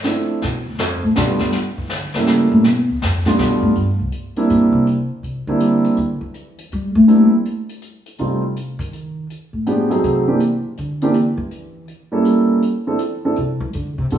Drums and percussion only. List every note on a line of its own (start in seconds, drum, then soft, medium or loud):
0.04 snare soft
0.42 brush sweep soft
0.42 snare soft
0.79 snare medium
1.16 snare medium
1.39 snare soft
1.52 brush sweep medium
1.52 snare soft
1.89 snare medium
2.14 snare soft
2.27 snare soft
2.64 brush sweep soft
2.64 snare soft
3.02 snare medium
3.25 snare soft
3.39 snare soft
3.75 closed hi-hat soft
4.12 closed hi-hat soft
4.36 closed hi-hat soft
4.50 closed hi-hat soft
4.87 closed hi-hat soft
5.24 closed hi-hat soft
5.60 closed hi-hat soft
5.84 closed hi-hat soft
5.97 closed hi-hat soft
6.34 closed hi-hat soft
6.58 closed hi-hat soft
6.72 closed hi-hat soft
7.08 closed hi-hat soft
7.45 closed hi-hat soft
7.69 closed hi-hat soft
7.82 closed hi-hat soft
8.06 closed hi-hat soft
8.18 closed hi-hat soft
8.56 closed hi-hat soft
8.80 closed hi-hat soft
8.93 closed hi-hat soft
9.30 closed hi-hat soft
9.67 closed hi-hat soft
9.91 closed hi-hat soft
10.04 closed hi-hat soft
10.40 closed hi-hat soft
10.77 closed hi-hat soft
11.01 closed hi-hat soft
11.14 closed hi-hat soft
11.51 closed hi-hat soft
11.88 closed hi-hat soft
12.25 closed hi-hat soft
12.62 closed hi-hat soft
12.99 closed hi-hat soft
13.36 closed hi-hat soft
13.73 closed hi-hat soft
14.10 closed hi-hat soft